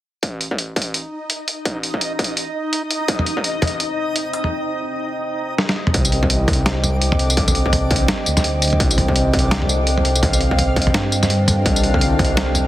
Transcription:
0.23 D#4 D#5, kick, closed hi-hat
0.41 closed hi-hat
0.51 kick
0.58 closed hi-hat
0.76 kick, closed hi-hat
0.82 closed hi-hat
0.94 closed hi-hat
1.30 closed hi-hat
1.48 closed hi-hat
1.65 kick, closed hi-hat
1.83 closed hi-hat
1.94 kick
2.01 closed hi-hat
2.19 kick, closed hi-hat
2.24 closed hi-hat
2.37 closed hi-hat
2.73 closed hi-hat
2.91 closed hi-hat
3.08 C4, kick, closed hi-hat
3.19 mid tom
3.26 closed hi-hat
3.35 C5 D#5, kick
3.44 closed hi-hat
3.62 kick, closed hi-hat, mid tom
3.67 closed hi-hat
3.80 G5, closed hi-hat
4.16 closed hi-hat
4.33 closed hi-hat
4.44 mid tom
5.58 snare
5.69 snare
5.87 mid tom
5.94 C2 D3 D6, kick, closed hi-hat
6.05 tambourine
6.12 closed hi-hat
6.23 kick, mid tom
6.30 closed hi-hat
6.48 C2, kick, closed hi-hat, mid tom
6.53 closed hi-hat
6.66 snare, closed hi-hat
6.84 mid tom, tambourine
7.02 C2, closed hi-hat
7.12 mid tom
7.19 closed hi-hat
7.30 tambourine
7.37 kick, closed hi-hat
7.48 mid tom, tambourine
7.55 closed hi-hat
7.66 kick
7.73 closed hi-hat, mid tom
7.91 kick, closed hi-hat
7.96 closed hi-hat
8.08 snare, closed hi-hat, mid tom
8.26 D2, tambourine
8.37 snare, mid tom, tambourine
8.44 closed hi-hat
8.62 closed hi-hat, tambourine
8.65 closed hi-hat
8.68 closed hi-hat
8.70 closed hi-hat, mid tom
8.80 C2 F5, kick, closed hi-hat
8.91 tambourine
8.98 closed hi-hat, mid tom
9.08 kick
9.16 closed hi-hat
9.33 C2, kick, closed hi-hat, mid tom
9.39 closed hi-hat
9.51 snare, closed hi-hat
9.62 mid tom
9.69 tambourine
9.87 C2, closed hi-hat
9.98 mid tom
10.05 closed hi-hat
10.15 tambourine
10.23 kick, closed hi-hat, mid tom
10.33 tambourine
10.41 closed hi-hat
10.51 kick
10.59 closed hi-hat, mid tom
10.76 kick, closed hi-hat
10.82 closed hi-hat
10.87 mid tom
10.94 G2, snare, closed hi-hat
11.12 tambourine
11.23 snare, mid tom, tambourine
11.30 closed hi-hat
11.48 closed hi-hat, mid tom, tambourine
11.65 C2 D6, kick, closed hi-hat
11.76 tambourine
11.83 closed hi-hat
11.94 kick, mid tom
12.01 closed hi-hat
12.19 C2, kick, closed hi-hat, mid tom
12.25 closed hi-hat
12.37 snare, closed hi-hat
12.55 mid tom, tambourine

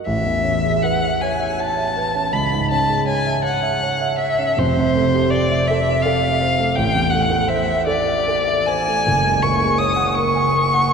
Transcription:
0.06 A1 E5
0.25 E2
0.43 C#4
0.64 G#4
0.83 B4 F#5
1.03 E5
1.21 C#5 G#5
1.40 E5
1.59 C#5 A5
1.77 E5
1.96 B4
2.15 C#4
2.32 C#2 B5
2.52 G#2
2.71 C#4 A5
2.90 G#4
3.07 C#5 G#5
3.27 E5
3.43 C#5 F#5
3.63 E5
3.83 C#5
4.02 E5
4.18 C#5 E5
4.38 C#4
4.57 F1 F2 C5
4.77 C3
4.95 A3
5.15 G4
5.30 C5 D5
5.51 E5
5.68 A4 E5
5.89 E5
6.02 A4 F5
6.23 E5
6.41 C5
6.59 A3
6.75 A1 G5
6.95 E2
7.10 A3 F#5
7.30 A4
7.48 C5 E5
7.66 E5
7.87 A4 D5
8.07 E5
8.28 A4
8.48 E5
8.66 C5 G#5
8.88 A3
9.07 F#1
9.25 C#2
9.43 A#3 C#6
9.60 G#4
9.78 C#5 D#6
9.96 F#5
10.15 A#4 C#6
10.35 G#5
10.53 A#4
10.74 F#5

